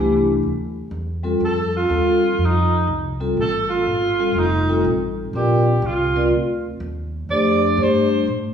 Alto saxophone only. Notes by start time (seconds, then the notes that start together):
Already playing: E3
1.45 A4
1.76 F4
2.45 D#4
3.41 A4
3.69 F4
4.39 D#4
5.36 G4
5.86 F4
7.31 D5
7.83 C5